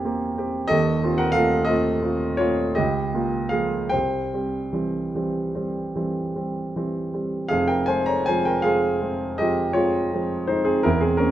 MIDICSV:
0, 0, Header, 1, 2, 480
1, 0, Start_track
1, 0, Key_signature, -4, "minor"
1, 0, Tempo, 672646
1, 512, Time_signature, 9, 3, 24, 8
1, 1466, Tempo, 731707
1, 1946, Tempo, 754717
1, 2426, Tempo, 800000
1, 4346, Tempo, 771208
1, 5306, Tempo, 737101
1, 6746, Tempo, 698487
1, 7307, End_track
2, 0, Start_track
2, 0, Title_t, "Grand piano"
2, 0, Program_c, 0, 0
2, 0, Control_c, 0, 64, 127
2, 0, Note_on_c, 0, 58, 50
2, 0, Note_on_c, 0, 60, 42
2, 0, Note_on_c, 0, 64, 55
2, 0, Note_on_c, 0, 65, 67
2, 0, Note_on_c, 0, 67, 54
2, 0, Note_on_c, 0, 72, 73
2, 0, Note_on_c, 0, 73, 86
2, 35, Note_off_c, 0, 58, 0
2, 35, Note_on_c, 0, 58, 46
2, 36, Note_off_c, 0, 60, 0
2, 36, Note_on_c, 0, 60, 44
2, 38, Note_off_c, 0, 67, 0
2, 38, Note_on_c, 0, 67, 47
2, 238, Note_off_c, 0, 64, 0
2, 250, Note_off_c, 0, 58, 0
2, 250, Note_off_c, 0, 60, 0
2, 252, Note_off_c, 0, 67, 0
2, 259, Note_off_c, 0, 72, 0
2, 270, Note_on_c, 0, 60, 46
2, 275, Note_on_c, 0, 67, 54
2, 482, Note_on_c, 0, 75, 107
2, 487, Note_off_c, 0, 60, 0
2, 490, Note_off_c, 0, 67, 0
2, 490, Note_on_c, 0, 69, 71
2, 497, Note_on_c, 0, 27, 61
2, 506, Note_on_c, 0, 39, 69
2, 524, Control_c, 0, 64, 0
2, 527, Note_off_c, 0, 65, 0
2, 527, Note_off_c, 0, 73, 0
2, 624, Control_c, 0, 64, 127
2, 731, Note_off_c, 0, 27, 0
2, 736, Note_off_c, 0, 39, 0
2, 740, Note_on_c, 0, 60, 49
2, 745, Note_on_c, 0, 65, 55
2, 825, Note_off_c, 0, 69, 0
2, 841, Note_on_c, 0, 78, 92
2, 846, Note_off_c, 0, 75, 0
2, 846, Note_on_c, 0, 70, 72
2, 941, Note_on_c, 0, 77, 100
2, 947, Note_on_c, 0, 69, 74
2, 950, Note_off_c, 0, 60, 0
2, 953, Note_off_c, 0, 65, 0
2, 961, Note_off_c, 0, 70, 0
2, 963, Note_on_c, 0, 57, 48
2, 966, Note_on_c, 0, 65, 51
2, 967, Note_off_c, 0, 78, 0
2, 970, Note_on_c, 0, 60, 53
2, 1173, Note_off_c, 0, 69, 0
2, 1175, Note_on_c, 0, 75, 94
2, 1184, Note_on_c, 0, 69, 73
2, 1185, Note_off_c, 0, 57, 0
2, 1186, Note_off_c, 0, 65, 0
2, 1189, Note_off_c, 0, 60, 0
2, 1198, Note_off_c, 0, 77, 0
2, 1200, Note_on_c, 0, 57, 50
2, 1202, Note_on_c, 0, 60, 48
2, 1203, Note_on_c, 0, 65, 54
2, 1433, Note_off_c, 0, 57, 0
2, 1433, Note_off_c, 0, 60, 0
2, 1435, Note_off_c, 0, 65, 0
2, 1444, Note_on_c, 0, 60, 47
2, 1451, Note_on_c, 0, 65, 52
2, 1664, Note_off_c, 0, 69, 0
2, 1669, Note_off_c, 0, 60, 0
2, 1673, Note_off_c, 0, 65, 0
2, 1675, Note_on_c, 0, 73, 87
2, 1682, Note_on_c, 0, 65, 67
2, 1686, Note_off_c, 0, 75, 0
2, 1695, Note_on_c, 0, 57, 46
2, 1696, Note_on_c, 0, 60, 48
2, 1918, Note_off_c, 0, 57, 0
2, 1918, Note_off_c, 0, 60, 0
2, 1918, Note_off_c, 0, 65, 0
2, 1922, Note_on_c, 0, 75, 84
2, 1928, Note_on_c, 0, 67, 64
2, 1932, Note_off_c, 0, 73, 0
2, 1941, Note_on_c, 0, 37, 58
2, 1959, Control_c, 0, 64, 0
2, 2050, Control_c, 0, 64, 127
2, 2173, Note_on_c, 0, 58, 39
2, 2174, Note_off_c, 0, 37, 0
2, 2176, Note_on_c, 0, 65, 47
2, 2393, Note_off_c, 0, 67, 0
2, 2395, Note_on_c, 0, 77, 81
2, 2396, Note_off_c, 0, 58, 0
2, 2398, Note_off_c, 0, 65, 0
2, 2405, Note_on_c, 0, 68, 59
2, 2415, Note_off_c, 0, 75, 0
2, 2415, Note_on_c, 0, 53, 36
2, 2420, Note_on_c, 0, 58, 37
2, 2424, Note_on_c, 0, 65, 43
2, 2634, Note_off_c, 0, 53, 0
2, 2636, Note_off_c, 0, 68, 0
2, 2637, Note_off_c, 0, 58, 0
2, 2638, Note_on_c, 0, 79, 90
2, 2639, Note_off_c, 0, 65, 0
2, 2649, Note_off_c, 0, 77, 0
2, 2651, Note_on_c, 0, 72, 66
2, 2661, Note_on_c, 0, 36, 49
2, 2677, Control_c, 0, 64, 0
2, 2798, Control_c, 0, 64, 127
2, 2898, Note_off_c, 0, 36, 0
2, 2905, Note_on_c, 0, 55, 37
2, 2909, Note_on_c, 0, 60, 40
2, 3125, Note_off_c, 0, 55, 0
2, 3127, Note_off_c, 0, 60, 0
2, 3138, Note_on_c, 0, 52, 37
2, 3141, Note_on_c, 0, 55, 37
2, 3145, Note_on_c, 0, 60, 40
2, 3363, Note_off_c, 0, 52, 0
2, 3364, Note_off_c, 0, 55, 0
2, 3366, Note_off_c, 0, 60, 0
2, 3391, Note_on_c, 0, 52, 37
2, 3395, Note_on_c, 0, 55, 41
2, 3399, Note_on_c, 0, 60, 39
2, 3609, Note_off_c, 0, 52, 0
2, 3611, Note_off_c, 0, 55, 0
2, 3613, Note_off_c, 0, 60, 0
2, 3632, Note_on_c, 0, 55, 38
2, 3632, Note_on_c, 0, 60, 39
2, 3847, Note_off_c, 0, 55, 0
2, 3847, Note_off_c, 0, 60, 0
2, 3874, Note_on_c, 0, 55, 39
2, 3876, Note_on_c, 0, 52, 37
2, 3881, Note_on_c, 0, 60, 41
2, 4088, Note_off_c, 0, 52, 0
2, 4088, Note_off_c, 0, 55, 0
2, 4091, Note_off_c, 0, 60, 0
2, 4117, Note_on_c, 0, 55, 35
2, 4119, Note_on_c, 0, 60, 36
2, 4327, Note_off_c, 0, 55, 0
2, 4329, Note_off_c, 0, 60, 0
2, 4358, Note_on_c, 0, 52, 36
2, 4360, Note_on_c, 0, 55, 36
2, 4364, Note_on_c, 0, 60, 41
2, 4560, Note_off_c, 0, 72, 0
2, 4573, Note_off_c, 0, 52, 0
2, 4574, Note_off_c, 0, 55, 0
2, 4576, Note_off_c, 0, 60, 0
2, 4578, Note_off_c, 0, 79, 0
2, 4591, Note_on_c, 0, 55, 33
2, 4596, Note_on_c, 0, 60, 36
2, 4806, Note_off_c, 0, 55, 0
2, 4808, Note_off_c, 0, 60, 0
2, 4809, Note_on_c, 0, 77, 91
2, 4814, Note_on_c, 0, 68, 71
2, 4822, Note_on_c, 0, 29, 51
2, 4830, Note_on_c, 0, 41, 53
2, 4842, Control_c, 0, 64, 0
2, 4928, Note_on_c, 0, 79, 80
2, 4931, Note_off_c, 0, 68, 0
2, 4934, Note_on_c, 0, 70, 58
2, 4937, Note_off_c, 0, 77, 0
2, 4949, Control_c, 0, 64, 127
2, 5042, Note_on_c, 0, 80, 86
2, 5051, Note_off_c, 0, 70, 0
2, 5054, Note_on_c, 0, 72, 65
2, 5056, Note_off_c, 0, 29, 0
2, 5057, Note_off_c, 0, 79, 0
2, 5059, Note_on_c, 0, 56, 38
2, 5060, Note_off_c, 0, 41, 0
2, 5064, Note_on_c, 0, 60, 46
2, 5167, Note_on_c, 0, 82, 83
2, 5172, Note_off_c, 0, 72, 0
2, 5175, Note_off_c, 0, 80, 0
2, 5178, Note_on_c, 0, 73, 58
2, 5279, Note_off_c, 0, 56, 0
2, 5282, Note_off_c, 0, 60, 0
2, 5290, Note_on_c, 0, 80, 94
2, 5294, Note_off_c, 0, 73, 0
2, 5297, Note_off_c, 0, 82, 0
2, 5298, Note_on_c, 0, 72, 67
2, 5309, Note_on_c, 0, 53, 40
2, 5311, Note_on_c, 0, 56, 41
2, 5314, Note_on_c, 0, 60, 42
2, 5416, Note_on_c, 0, 79, 77
2, 5418, Note_off_c, 0, 72, 0
2, 5423, Note_off_c, 0, 80, 0
2, 5426, Note_on_c, 0, 70, 61
2, 5527, Note_on_c, 0, 77, 85
2, 5532, Note_off_c, 0, 53, 0
2, 5533, Note_off_c, 0, 56, 0
2, 5534, Note_off_c, 0, 60, 0
2, 5538, Note_on_c, 0, 68, 66
2, 5544, Note_off_c, 0, 70, 0
2, 5548, Note_off_c, 0, 79, 0
2, 5549, Note_on_c, 0, 56, 43
2, 5550, Note_on_c, 0, 53, 41
2, 5554, Note_on_c, 0, 60, 43
2, 5770, Note_off_c, 0, 56, 0
2, 5771, Note_off_c, 0, 53, 0
2, 5773, Note_off_c, 0, 60, 0
2, 5786, Note_on_c, 0, 56, 39
2, 5786, Note_on_c, 0, 60, 44
2, 6000, Note_off_c, 0, 68, 0
2, 6004, Note_off_c, 0, 56, 0
2, 6005, Note_off_c, 0, 60, 0
2, 6020, Note_off_c, 0, 77, 0
2, 6021, Note_on_c, 0, 75, 87
2, 6025, Note_on_c, 0, 67, 66
2, 6037, Note_on_c, 0, 53, 45
2, 6038, Note_on_c, 0, 56, 44
2, 6045, Note_on_c, 0, 60, 50
2, 6249, Note_off_c, 0, 53, 0
2, 6249, Note_off_c, 0, 56, 0
2, 6249, Note_off_c, 0, 67, 0
2, 6250, Note_on_c, 0, 73, 76
2, 6253, Note_off_c, 0, 60, 0
2, 6256, Note_on_c, 0, 65, 61
2, 6264, Note_off_c, 0, 75, 0
2, 6270, Note_on_c, 0, 56, 41
2, 6274, Note_on_c, 0, 60, 44
2, 6486, Note_off_c, 0, 56, 0
2, 6488, Note_off_c, 0, 60, 0
2, 6507, Note_on_c, 0, 53, 40
2, 6513, Note_on_c, 0, 56, 41
2, 6517, Note_on_c, 0, 60, 45
2, 6713, Note_off_c, 0, 65, 0
2, 6722, Note_off_c, 0, 53, 0
2, 6725, Note_off_c, 0, 56, 0
2, 6727, Note_off_c, 0, 60, 0
2, 6733, Note_on_c, 0, 72, 75
2, 6737, Note_off_c, 0, 73, 0
2, 6738, Note_on_c, 0, 63, 60
2, 6750, Note_on_c, 0, 56, 38
2, 6755, Note_on_c, 0, 60, 40
2, 6846, Note_off_c, 0, 60, 0
2, 6851, Note_on_c, 0, 68, 75
2, 6855, Note_off_c, 0, 63, 0
2, 6856, Note_on_c, 0, 60, 52
2, 6861, Note_off_c, 0, 72, 0
2, 6966, Note_off_c, 0, 56, 0
2, 6973, Note_off_c, 0, 60, 0
2, 6979, Note_off_c, 0, 68, 0
2, 6979, Note_on_c, 0, 70, 88
2, 6985, Note_on_c, 0, 64, 72
2, 6992, Note_on_c, 0, 28, 55
2, 6996, Note_on_c, 0, 40, 60
2, 6999, Control_c, 0, 64, 0
2, 7097, Note_off_c, 0, 64, 0
2, 7098, Note_on_c, 0, 68, 76
2, 7102, Note_off_c, 0, 70, 0
2, 7105, Note_on_c, 0, 60, 58
2, 7125, Control_c, 0, 64, 127
2, 7211, Note_on_c, 0, 70, 80
2, 7217, Note_off_c, 0, 60, 0
2, 7219, Note_on_c, 0, 61, 66
2, 7221, Note_off_c, 0, 28, 0
2, 7222, Note_off_c, 0, 68, 0
2, 7223, Note_off_c, 0, 40, 0
2, 7229, Note_on_c, 0, 58, 44
2, 7236, Note_on_c, 0, 60, 46
2, 7307, Note_off_c, 0, 58, 0
2, 7307, Note_off_c, 0, 60, 0
2, 7307, Note_off_c, 0, 61, 0
2, 7307, Note_off_c, 0, 70, 0
2, 7307, End_track
0, 0, End_of_file